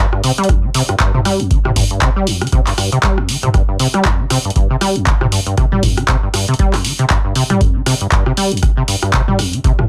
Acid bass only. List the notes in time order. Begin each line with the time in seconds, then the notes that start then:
0.13 G2
0.24 C3
0.38 G3
0.49 F2
0.64 D3
0.74 C3
0.89 G2
1.00 G2
1.14 C3
1.25 G3
1.40 F2
1.51 D3
1.65 C3
1.76 G2
1.91 G2
2.02 C3
2.16 G3
2.27 F2
2.41 D3
2.52 C3
2.67 G2
2.78 G2
2.92 C3
3.03 G3
3.18 F2
3.29 D3
3.43 C3
3.54 G2
3.69 G2
3.80 C3
3.94 G3
4.05 F2
4.19 D3
4.30 C3
4.45 G2
4.56 G2
4.70 C3
4.81 G3
4.96 F2
5.07 D3
5.21 C3
5.32 G2
5.47 G2
5.57 C3
5.72 G3
5.83 F2
5.97 D3
6.08 C3
6.23 G2
6.34 G2
6.48 C3
6.59 G3
6.74 F2
6.85 D3
6.99 C3
7.10 G2
7.25 G2
7.35 C3
7.50 G3
7.61 F2
7.75 D3
7.86 C3
8.01 G2
8.12 G2
8.26 C3
8.37 G3
8.52 F2
8.63 D3
8.77 C3
8.88 G2
9.03 G2
9.13 C3
9.28 G3
9.39 F2
9.53 D3
9.64 C3
9.79 G2